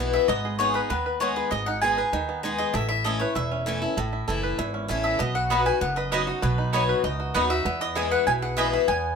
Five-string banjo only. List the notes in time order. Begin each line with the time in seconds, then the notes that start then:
Already playing: G#4 B4
0.00 B3
0.14 G#4
0.29 B3
0.45 G#4
0.60 B3
0.75 B4
0.90 B3
1.06 B4
1.21 B3
1.37 G#4
1.52 G#4
1.68 D#4
1.82 G#4
1.98 B4
2.13 D#4
2.29 B3
2.44 D#4
2.60 G#4
2.75 A4
2.90 E4
3.05 A4
3.21 B4
3.36 E4
3.51 C#4
3.67 E4
3.83 A4
3.97 A4
4.13 E4
4.28 A4
4.43 B4
4.59 E4
4.74 C#4
4.89 E4
5.04 A4
5.19 B3
5.35 F#4
5.50 B3
5.66 B4
5.81 B3
5.97 B4
6.12 B3
6.28 F#4
6.42 B3
6.58 D#4
6.74 F#4
6.89 B4
7.04 D#4
7.20 F#4
7.34 B4
7.50 F#4
7.65 B3
7.81 E4
7.96 G#4
8.11 B4
8.27 E4
8.42 G#4
8.57 B4
8.73 G#4
8.88 B3